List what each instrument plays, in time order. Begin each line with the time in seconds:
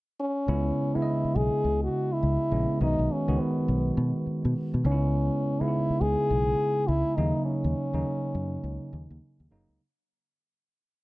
0.19 french horn C#4
0.47 fingered electric bass C#2, tine electric piano C#3 G#3 B3 E4
0.95 tine electric piano C#3 G#3 B3 D4, french horn E4, muted fingered electric bass stroke
1.02 tine electric piano D#5
1.24 muted fingered electric bass stroke
1.35 fingered electric bass B1, french horn G#4
1.64 fingered electric bass C#2
1.83 french horn F#4
2.12 french horn E4
2.23 fingered electric bass C#2
2.51 fingered electric bass A#1, tine electric piano C#3 G#3 B3 C#4
2.80 fingered electric bass B1, tine electric piano D#3 G#3 B3 F#4, french horn D#4
2.99 fingered electric bass B1
3.12 french horn C#4
3.28 fingered electric bass C#2, tine electric piano D#3 G#3 B3 F#4
3.41 french horn B3
3.68 fingered electric bass B1
3.97 fingered electric bass B2
4.26 muted fingered electric bass stroke
4.45 fingered electric bass B2
4.74 fingered electric bass B2
4.84 fingered electric bass C#2, tine electric piano C#3 G#3 B3 D#4, french horn C#4
4.92 tine electric piano E4
5.61 tine electric piano C#3 G#3 B3 D#4, french horn E4, muted fingered electric bass stroke
5.68 tine electric piano E4
5.90 muted fingered electric bass stroke
6.01 fingered electric bass C#2, french horn G#4
6.30 fingered electric bass B1
6.87 fingered electric bass C#2, french horn E4
7.16 fingered electric bass D#2, tine electric piano C#3 F#3 A#3 D#4, french horn D#4
7.45 french horn C#4
7.64 fingered electric bass D#2
7.93 fingered electric bass D#2, tine electric piano C#3 F#3 A#3 D#4
8.34 fingered electric bass F#2
8.64 fingered electric bass C#2
8.93 fingered electric bass D#2
9.10 fingered electric bass D#2
9.40 fingered electric bass D#2
9.51 fingered electric bass F#1, tine electric piano C#3 F#3 A#3 D#4
9.69 fingered electric bass C#2